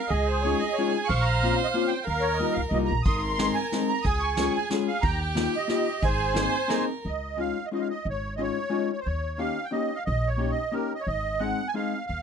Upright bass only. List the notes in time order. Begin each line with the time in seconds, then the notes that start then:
0.10 C#2
1.09 A#1
2.07 D#2
2.57 C#2
2.71 C2
2.90 A#1
3.06 G#1
4.04 C#2
5.03 D#2
6.02 G#1
7.05 C#2
8.05 G#1
9.06 D#2
10.07 A#1
11.07 G#1
12.09 D#2